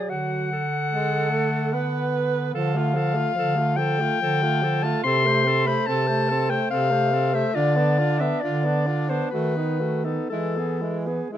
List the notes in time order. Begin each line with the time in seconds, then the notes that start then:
Already playing: F#3 G#4 D5
0.09 D3 F#4 F#5
0.53 A4
0.90 G#3
1.30 A3
1.73 B3 B4
2.54 D3 F3 A4 F5
2.75 A3 F4
2.94 F3 A4
3.14 A3 F4
3.34 D3 F3
3.38 A4
3.55 A3 F4
3.77 F3 A4 G5
3.99 A3 F4
4.20 D3 F3 A4
4.43 A3 F4
4.62 F3 A4
4.83 A3 F4 A5
5.03 C3 C4 A4 C6
5.25 A3 C5
5.45 C4 A4
5.66 A3 C5 B5
5.86 C3 C4 A4 A5
6.07 A3 C5
6.29 C4 A4
6.50 A3 C5 G5
6.70 C3 C4 A4 F5
6.90 A3 C5
7.12 C4 A4
7.34 A3 C5 E5
7.54 D3 D4 F4 D5
7.76 B3 D4
7.99 D4 F4
8.20 B3 D4 E5
8.40 D3 D4 F4 D5
8.64 B3 D4
8.86 D4 F4
9.09 B3 D4 C5
9.30 D#3 A3 F#4 B4
9.56 B3 D#4
9.80 A3 F#4
10.04 B3 D#4 A4
10.29 E3 G#3 E4 A4
10.56 B3 G#4
10.81 G#3 E4
11.07 B3 G#4
11.30 E3 G#3 E4 G#4